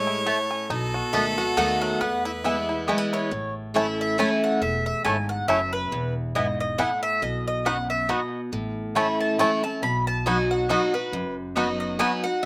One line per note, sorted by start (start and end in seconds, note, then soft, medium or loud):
0.00 0.29 A1 medium
0.00 0.23 A2 medium
0.00 0.25 G#3 medium
0.00 0.25 A3 medium
0.00 0.23 C#4 medium
0.00 0.47 C#5 medium
0.00 0.72 C#5 loud
0.07 0.66 E4 medium
0.26 0.68 A2 loud
0.26 0.37 A3 medium
0.26 0.70 A3 medium
0.26 0.37 E4 medium
0.26 0.37 C#5 medium
0.26 0.37 A5 medium
0.51 0.70 C#4 medium
0.70 1.00 B1 loud
0.70 1.54 B2 medium
0.70 1.33 D#4 medium
0.70 2.03 A4 loud
0.94 1.37 F#4 medium
1.13 1.51 C#2 medium
1.13 1.37 D#3 medium
1.13 1.37 A3 medium
1.13 1.24 B3 medium
1.13 1.38 B3 medium
1.13 1.24 F#4 medium
1.13 1.37 F#4 medium
1.13 1.77 A4 medium
1.13 1.24 D#5 medium
1.13 1.36 E5 loud
1.13 1.24 A5 loud
1.38 1.57 B3 soft
1.38 1.97 F#4 medium
1.38 1.57 F#4 medium
1.38 1.56 F#5 loud
1.57 1.94 D#2 medium
1.57 1.99 D#3 loud
1.57 1.99 A3 loud
1.57 1.67 B3 medium
1.57 1.99 B3 loud
1.57 2.01 D#4 medium
1.57 1.68 F#4 medium
1.57 2.00 F#4 loud
1.57 1.68 D#5 loud
1.57 1.80 F#5 loud
1.57 1.68 A5 loud
1.81 2.01 F#3 medium
1.81 2.00 F#5 loud
2.01 2.90 E2 loud
2.01 2.84 E2 medium
2.01 2.43 B3 medium
2.01 3.12 B4 loud
2.01 2.23 F#5 medium
2.25 2.68 E4 medium
2.25 2.30 E5 medium
2.44 2.86 E3 medium
2.44 2.86 G#3 medium
2.44 2.54 B3 medium
2.44 2.88 B3 medium
2.44 2.87 B3 medium
2.44 2.55 E4 medium
2.44 2.87 E4 medium
2.44 2.55 B4 medium
2.44 3.08 E5 medium
2.44 2.55 G#5 loud
2.69 3.12 E4 medium
2.87 3.29 E3 loud
2.87 3.30 G#3 loud
2.87 2.98 A3 medium
2.87 2.98 B3 medium
2.87 3.30 B3 loud
2.87 2.98 E4 medium
2.87 3.30 E4 loud
2.87 2.98 B4 medium
2.87 2.98 G#5 loud
2.98 3.32 B3 medium
3.13 3.32 E4 medium
3.13 3.53 C#5 loud
3.31 4.21 A1 medium
3.31 4.15 A2 medium
3.74 4.16 E3 medium
3.74 4.16 A3 medium
3.74 3.85 A3 medium
3.74 3.86 A3 medium
3.74 4.17 C#4 medium
3.74 3.86 C#4 medium
3.74 3.85 E4 medium
3.74 4.17 E4 loud
3.74 3.86 E4 medium
3.74 3.85 C#5 loud
3.74 3.98 E5 loud
3.74 3.85 A5 loud
4.01 4.19 E5 loud
4.18 4.60 E3 loud
4.18 4.28 A3 medium
4.18 4.60 A3 loud
4.18 4.29 A3 medium
4.18 4.60 C#4 loud
4.18 4.30 C#4 medium
4.18 4.29 E4 medium
4.18 4.60 E4 loud
4.18 4.30 E4 medium
4.18 4.29 C#5 loud
4.18 4.42 G#5 loud
4.18 4.29 A5 medium
4.44 4.61 F#5 loud
4.61 4.91 E1 loud
4.61 5.05 E2 medium
4.61 4.85 E5 medium
4.86 5.04 E5 medium
5.05 5.42 G#1 medium
5.05 5.47 G#2 medium
5.05 5.15 A3 medium
5.05 5.16 A3 medium
5.05 5.16 C#4 medium
5.05 5.15 E4 medium
5.05 5.16 E4 medium
5.05 5.15 C#5 loud
5.05 5.29 G#5 loud
5.05 5.16 A5 medium
5.29 5.48 F#5 medium
5.48 5.85 F#1 medium
5.48 5.90 F#2 medium
5.48 5.58 A3 medium
5.48 5.60 A3 medium
5.48 5.60 C#4 medium
5.48 5.59 E4 medium
5.48 5.60 E4 medium
5.48 5.59 C#5 loud
5.48 5.71 E5 loud
5.48 5.59 A5 loud
5.73 6.13 B4 medium
5.91 6.81 E1 loud
5.91 6.35 E2 medium
6.35 6.77 G#2 medium
6.35 6.45 B3 medium
6.35 6.46 B3 medium
6.35 6.46 E4 medium
6.35 6.39 E4 medium
6.35 6.46 B4 medium
6.35 6.58 D#5 loud
6.35 6.46 G#5 loud
6.60 6.80 D#5 loud
6.78 7.20 A2 loud
6.78 6.89 B3 medium
6.78 6.90 B3 medium
6.78 6.89 E4 medium
6.78 6.82 E4 medium
6.78 6.89 B4 medium
6.78 7.02 F#5 loud
6.78 6.89 G#5 loud
7.03 7.21 E5 loud
7.22 8.11 B1 medium
7.22 8.05 B2 medium
7.22 7.46 D#5 loud
7.48 7.67 D#5 loud
7.65 8.07 F#2 medium
7.65 7.76 B3 medium
7.65 7.77 B3 medium
7.65 7.77 D#4 medium
7.65 7.76 F#4 medium
7.65 7.77 F#4 medium
7.65 7.76 D#5 loud
7.65 7.89 F#5 loud
7.65 7.76 B5 loud
7.90 8.08 E5 medium
8.08 8.51 B2 loud
8.08 8.19 B3 medium
8.08 8.20 B3 medium
8.08 8.20 D#4 medium
8.08 8.19 F#4 medium
8.08 8.20 F#4 medium
8.08 8.41 D#5 medium
8.08 8.19 D#5 medium
8.08 8.20 B5 loud
8.52 9.42 A1 loud
8.52 9.36 A2 medium
8.95 9.37 E3 medium
8.95 9.06 A3 medium
8.95 9.07 A3 medium
8.95 9.38 A3 medium
8.95 9.07 C#4 medium
8.95 9.38 C#4 medium
8.95 9.06 E4 medium
8.95 9.07 E4 medium
8.95 9.38 E4 medium
8.95 9.06 C#5 medium
8.95 9.06 A5 loud
8.95 9.19 B5 medium
9.21 9.38 A5 medium
9.39 9.63 E3 loud
9.39 9.49 A3 medium
9.39 9.63 A3 loud
9.39 9.50 A3 medium
9.39 9.51 C#4 medium
9.39 9.63 C#4 medium
9.39 9.49 E4 medium
9.39 9.62 E4 loud
9.39 9.51 E4 medium
9.39 9.49 C#5 medium
9.39 9.50 A5 loud
9.39 9.62 C#6 loud
9.63 9.83 C#4 soft
9.63 9.82 E4 medium
9.63 9.82 A5 loud
9.82 10.72 B1 loud
9.82 10.66 B2 medium
9.82 10.07 B5 loud
10.07 10.26 A5 medium
10.26 10.68 F#3 loud
10.26 10.36 B3 medium
10.26 10.68 B3 medium
10.26 10.37 B3 medium
10.26 10.68 D#4 medium
10.26 10.37 D#4 medium
10.26 10.36 F#4 medium
10.26 10.68 F#4 medium
10.26 10.38 F#4 medium
10.26 10.36 D#5 medium
10.26 10.50 G#5 loud
10.26 10.37 B5 loud
10.51 10.69 F#5 medium
10.69 10.93 F#3 loud
10.69 10.79 B3 medium
10.69 10.93 B3 medium
10.69 10.81 B3 medium
10.69 10.93 D#4 loud
10.69 10.81 D#4 medium
10.69 10.80 F#4 loud
10.69 10.92 F#4 loud
10.69 10.81 F#4 medium
10.69 10.80 D#5 loud
10.69 10.93 F#5 medium
10.69 10.80 B5 loud
10.94 11.13 D#4 soft
10.94 11.12 F#4 medium
10.94 11.34 B4 medium
11.12 12.02 F#1 medium
11.12 11.96 F#2 medium
11.56 11.98 F#3 medium
11.56 11.66 B3 medium
11.56 11.98 B3 medium
11.56 11.67 B3 medium
11.56 11.98 D#4 loud
11.56 11.68 D#4 medium
11.56 11.66 F#4 medium
11.56 11.98 F#4 medium
11.56 11.68 F#4 medium
11.56 11.66 D#5 medium
11.56 11.79 D#5 medium
11.56 11.67 B5 loud
11.80 11.98 D#5 medium
11.99 12.23 F#3 loud
11.99 12.09 B3 medium
11.99 12.23 B3 medium
11.99 12.11 B3 medium
11.99 12.23 D#4 loud
11.99 12.11 D#4 medium
11.99 12.10 F#4 medium
11.99 12.22 F#4 loud
11.99 12.11 F#4 medium
11.99 12.10 D#5 medium
11.99 12.23 G#5 loud
11.99 12.10 B5 medium
12.23 12.43 D#4 soft
12.23 12.42 F#4 medium
12.23 12.44 F#5 loud